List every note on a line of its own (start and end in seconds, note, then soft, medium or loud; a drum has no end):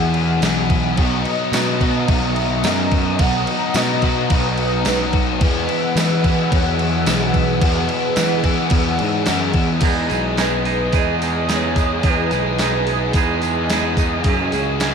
0.00 0.40 E2 loud
0.00 0.43 E2 medium
0.00 0.97 E2 medium
0.00 0.43 B2 medium
0.00 0.96 B2 medium
0.00 0.17 E3 medium
0.00 0.95 E3 medium
0.00 0.16 B3 medium
0.00 0.14 E4 loud
0.00 0.13 G#4 medium
0.00 0.94 G#4 medium
0.00 0.70 F#5 loud
0.00 0.94 F#5 medium
0.00 0.93 E6 medium
0.14 0.40 E3 medium
0.14 0.42 B3 medium
0.14 0.43 E4 medium
0.14 0.43 G#4 medium
0.14 crash medium
0.41 0.95 B1 medium
0.41 0.72 E3 medium
0.41 0.71 B3 medium
0.41 0.70 E4 medium
0.41 0.68 G#4 medium
0.41 snare loud
0.41 tambourine medium
0.41 crash medium
0.70 0.96 E3 medium
0.70 0.98 B3 medium
0.70 0.97 E4 medium
0.70 0.96 G#4 medium
0.70 kick medium
0.70 crash medium
0.96 1.24 B1 loud
0.96 2.07 B2 medium
0.96 1.51 F#3 medium
0.96 1.27 B3 medium
0.96 1.25 D#4 medium
0.96 1.23 F#4 loud
0.96 2.10 D#5 loud
0.96 5.37 A#5 medium
0.96 5.37 D#6 medium
0.96 kick loud
0.96 crash medium
1.01 5.42 A#4 medium
1.24 1.53 B3 medium
1.24 1.54 D#4 medium
1.24 1.55 F#4 medium
1.24 crash medium
1.52 2.05 B2 medium
1.52 2.08 F#3 medium
1.52 1.83 B3 medium
1.52 1.82 D#4 medium
1.52 1.79 F#4 medium
1.52 snare loud
1.52 tambourine loud
1.52 crash medium
1.80 3.17 B2 medium
1.80 3.20 F#3 medium
1.80 2.09 B3 medium
1.80 2.08 D#4 medium
1.80 2.10 F#4 medium
1.80 kick medium
1.80 crash medium
2.07 2.61 B1 loud
2.07 2.63 B2 medium
2.07 2.63 F#3 medium
2.07 2.38 B3 medium
2.07 2.35 D#4 loud
2.07 2.34 F#4 medium
2.07 2.67 E5 loud
2.07 kick loud
2.07 crash medium
2.34 2.64 B3 medium
2.34 2.65 D#4 medium
2.34 2.67 F#4 medium
2.34 crash medium
2.63 3.17 F#2 medium
2.63 3.19 F#3 medium
2.63 2.94 B3 medium
2.63 2.92 D#4 medium
2.63 2.91 F#4 medium
2.63 3.21 D#5 loud
2.63 snare loud
2.63 tambourine medium
2.63 crash medium
2.91 3.19 B3 medium
2.91 3.20 D#4 medium
2.91 3.21 F#4 medium
2.91 kick medium
2.91 crash medium
3.18 3.46 B1 medium
3.18 3.74 B2 loud
3.18 3.74 F#3 medium
3.18 3.49 B3 medium
3.18 3.47 D#4 medium
3.18 3.46 F#4 medium
3.18 3.77 F#5 loud
3.18 kick loud
3.18 crash loud
3.46 3.76 B3 medium
3.46 3.76 D#4 medium
3.46 3.78 F#4 medium
3.46 crash medium
3.74 4.27 B2 medium
3.74 4.31 F#3 medium
3.74 4.06 B3 medium
3.74 4.03 D#4 medium
3.74 4.30 D#5 medium
3.74 snare loud
3.74 tambourine medium
3.74 crash medium
3.78 4.02 F#4 medium
4.02 5.44 F#3 medium
4.02 4.32 D#4 medium
4.02 4.33 F#4 medium
4.02 kick medium
4.02 crash medium
4.06 5.41 B2 medium
4.06 4.32 B3 medium
4.30 4.83 B1 loud
4.30 4.86 B2 medium
4.30 4.85 F#3 medium
4.30 4.62 B3 loud
4.30 4.59 D#4 medium
4.30 4.58 F#4 medium
4.30 4.82 B4 medium
4.30 kick loud
4.30 crash medium
4.58 4.87 D#4 medium
4.58 4.89 F#4 medium
4.58 crash medium
4.62 4.86 B3 medium
4.85 5.38 B1 medium
4.85 5.42 F#3 medium
4.85 5.16 B3 medium
4.85 5.14 D#4 medium
4.85 5.25 B4 loud
4.85 snare loud
4.85 tambourine medium
4.85 crash medium
4.89 5.13 F#4 loud
5.00 snare soft
5.13 5.42 B3 medium
5.13 5.40 D#4 medium
5.13 5.44 F#4 medium
5.13 kick medium
5.13 crash medium
5.41 6.49 E2 medium
5.41 5.67 E2 loud
5.41 5.97 B2 medium
5.41 5.71 E3 medium
5.41 5.69 G#3 medium
5.41 5.68 B3 loud
5.41 5.67 E4 medium
5.41 9.84 G#4 medium
5.41 9.81 G#4 medium
5.41 6.55 B4 loud
5.41 9.80 F#5 medium
5.41 9.81 E6 medium
5.41 kick loud
5.41 crash medium
5.68 5.95 E3 medium
5.68 5.96 G#3 medium
5.68 5.97 B3 medium
5.68 5.98 E4 medium
5.68 crash medium
5.95 6.25 E3 medium
5.95 6.48 E3 loud
5.95 6.24 G#3 medium
5.95 6.23 B3 medium
5.95 6.22 E4 medium
5.95 snare loud
5.95 tambourine loud
5.95 crash medium
6.22 6.51 E3 medium
6.22 6.51 G#3 medium
6.22 6.52 B3 medium
6.22 6.53 E4 medium
6.22 kick medium
6.22 crash medium
6.27 7.61 E2 medium
6.27 7.62 B2 medium
6.50 7.60 E2 medium
6.50 7.04 E2 loud
6.50 7.06 B2 medium
6.50 6.81 E3 loud
6.50 6.80 G#3 loud
6.50 6.79 B3 loud
6.50 6.78 E4 medium
6.50 7.11 C#5 medium
6.50 kick loud
6.50 crash medium
6.78 7.04 E3 medium
6.78 7.06 G#3 medium
6.78 7.07 B3 medium
6.78 7.08 E4 medium
6.78 crash medium
7.05 7.59 B1 medium
7.05 7.37 E3 medium
7.05 7.35 G#3 loud
7.05 7.34 B3 medium
7.05 7.33 E4 loud
7.05 snare loud
7.05 tambourine loud
7.05 crash medium
7.09 7.63 B4 loud
7.33 7.61 E3 medium
7.33 7.62 G#3 medium
7.33 7.62 B3 medium
7.33 7.63 E4 medium
7.33 kick medium
7.33 crash medium
7.61 8.17 E2 medium
7.61 7.88 E2 medium
7.61 8.17 B2 medium
7.61 7.90 E3 medium
7.61 7.89 G#3 medium
7.61 7.88 B3 medium
7.61 7.87 E4 medium
7.61 9.24 B4 loud
7.61 kick loud
7.61 crash loud
7.88 8.15 E3 medium
7.88 8.16 G#3 medium
7.88 8.17 B3 medium
7.88 8.18 E4 medium
7.88 crash medium
8.16 8.46 E3 medium
8.16 8.70 E3 medium
8.16 8.45 G#3 medium
8.16 8.44 B3 medium
8.16 8.43 E4 medium
8.16 snare loud
8.16 tambourine loud
8.16 crash medium
8.44 9.82 E2 medium
8.44 9.82 B2 medium
8.44 8.71 E3 medium
8.44 8.72 G#3 medium
8.44 8.72 B3 medium
8.44 8.73 E4 medium
8.44 kick medium
8.44 crash medium
8.70 9.27 E2 medium
8.70 8.98 E2 loud
8.70 9.27 B2 medium
8.70 9.01 E3 medium
8.70 8.99 G#3 medium
8.70 8.98 B3 medium
8.70 kick loud
8.70 crash medium
8.74 8.97 E4 medium
8.98 9.25 G#2 medium
8.98 9.25 E3 medium
8.98 9.26 G#3 medium
8.98 9.27 B3 medium
8.98 9.29 E4 medium
8.98 crash medium
9.26 9.53 F#2 medium
9.26 9.56 E3 medium
9.26 9.55 G#3 medium
9.26 9.54 B3 medium
9.26 snare loud
9.26 tambourine medium
9.26 crash medium
9.30 9.52 E4 medium
9.41 snare soft
9.53 9.80 E2 loud
9.53 9.82 E3 medium
9.53 9.82 G#3 medium
9.53 9.81 B3 medium
9.53 9.80 E4 medium
9.53 kick medium
9.53 crash medium
9.81 10.92 E2 medium
9.81 10.08 E2 medium
9.81 10.38 B2 medium
9.81 10.12 E3 medium
9.81 10.11 G#3 medium
9.81 10.10 B3 loud
9.81 10.12 D#4 medium
9.81 14.94 G#4 medium
9.81 14.94 D#5 medium
9.81 14.21 D#6 medium
9.81 kick loud
9.81 open hi-hat medium
9.81 crash loud
9.85 10.09 G#4 loud
10.09 10.89 B1 medium
10.09 10.36 E3 medium
10.09 10.38 G#3 medium
10.09 10.38 B3 medium
10.09 10.38 D#4 medium
10.09 10.39 G#4 medium
10.09 open hi-hat medium
10.09 tambourine medium
10.36 10.68 E3 medium
10.36 10.67 G#3 medium
10.36 10.66 B3 medium
10.36 10.66 D#4 medium
10.36 10.65 G#4 medium
10.36 10.99 B4 medium
10.36 snare loud
10.36 open hi-hat medium
10.36 tambourine medium
10.65 10.94 E3 medium
10.65 10.95 G#3 medium
10.65 10.95 B3 medium
10.65 10.94 D#4 medium
10.65 10.96 G#4 medium
10.65 open hi-hat medium
10.93 11.48 E2 medium
10.93 12.00 E2 medium
10.93 11.49 B2 loud
10.93 11.23 E3 medium
10.93 11.22 G#3 medium
10.93 11.21 B3 loud
10.93 11.22 D#4 loud
10.93 11.20 G#4 medium
10.93 kick loud
10.93 open hi-hat medium
10.93 tambourine medium
10.97 11.55 D#5 loud
11.20 11.48 E3 medium
11.20 11.49 G#3 medium
11.20 11.50 B3 medium
11.20 11.50 D#4 medium
11.20 11.52 G#4 medium
11.20 open hi-hat medium
11.20 tambourine medium
11.48 11.78 E3 medium
11.48 11.77 G#3 medium
11.48 11.76 B3 medium
11.48 11.76 D#4 medium
11.48 11.75 G#4 medium
11.48 snare loud
11.48 open hi-hat medium
11.48 tambourine medium
11.54 12.11 C#5 loud
11.75 12.04 E3 medium
11.75 12.04 G#3 medium
11.75 12.05 B3 medium
11.75 12.05 D#4 medium
11.75 12.06 G#4 medium
11.75 kick medium
11.75 open hi-hat medium
11.75 tambourine medium
12.03 12.59 E2 medium
12.03 12.30 E2 loud
12.03 12.59 B2 medium
12.03 12.34 E3 medium
12.03 12.33 G#3 medium
12.03 12.32 B3 loud
12.03 12.33 D#4 medium
12.03 12.31 G#4 medium
12.03 kick loud
12.03 open hi-hat medium
12.09 13.72 B4 loud
12.31 13.11 B1 medium
12.31 12.58 E3 medium
12.31 12.59 G#3 medium
12.31 12.61 B3 medium
12.31 12.61 D#4 medium
12.31 12.62 G#4 medium
12.31 open hi-hat medium
12.31 tambourine medium
12.59 12.90 E3 medium
12.59 12.89 G#3 medium
12.59 12.88 B3 medium
12.59 12.88 D#4 medium
12.59 12.86 G#4 medium
12.59 snare loud
12.59 open hi-hat medium
12.59 tambourine medium
12.87 13.15 E3 medium
12.87 13.15 G#3 medium
12.87 13.17 B3 medium
12.87 13.16 D#4 medium
12.87 13.17 G#4 medium
12.87 open hi-hat medium
13.13 14.21 E2 loud
13.13 13.70 E2 medium
13.13 13.70 B2 medium
13.13 13.44 E3 medium
13.13 13.43 G#3 medium
13.13 13.43 B3 loud
13.13 13.43 D#4 loud
13.13 kick loud
13.13 open hi-hat medium
13.13 tambourine medium
13.18 13.40 G#4 medium
13.41 13.69 E3 medium
13.41 13.70 G#3 medium
13.41 13.71 B3 medium
13.41 13.71 D#4 medium
13.41 13.72 G#4 medium
13.41 open hi-hat medium
13.41 tambourine medium
13.70 13.99 E3 medium
13.70 13.99 G#3 medium
13.70 13.98 B3 medium
13.70 13.98 D#4 medium
13.70 13.96 G#4 medium
13.70 snare loud
13.70 open hi-hat medium
13.70 tambourine medium
13.97 14.25 E3 medium
13.97 14.25 G#3 medium
13.97 14.27 B3 medium
13.97 14.24 D#4 medium
13.97 14.23 G#4 medium
13.97 kick medium
13.97 open hi-hat medium
13.97 tambourine medium
14.23 14.80 F#2 medium
14.23 14.51 F#2 medium
14.23 14.80 C#3 medium
14.23 14.53 E3 medium
14.23 14.53 A#3 medium
14.23 14.94 G#5 medium
14.23 kick loud
14.23 open hi-hat medium
14.27 14.51 C#4 medium
14.27 14.51 F#4 loud
14.27 14.53 G#4 medium
14.51 14.94 C#2 medium
14.51 14.79 E3 medium
14.51 14.80 A#3 medium
14.51 14.81 C#4 medium
14.51 14.83 F#4 medium
14.51 14.94 G#4 loud
14.51 14.81 G#4 medium
14.51 open hi-hat medium
14.51 tambourine medium
14.80 14.94 E3 medium
14.80 14.94 A#3 medium
14.80 14.94 C#4 medium
14.80 14.94 F#4 medium
14.80 14.94 G#4 medium
14.80 snare loud
14.80 open hi-hat medium
14.80 tambourine medium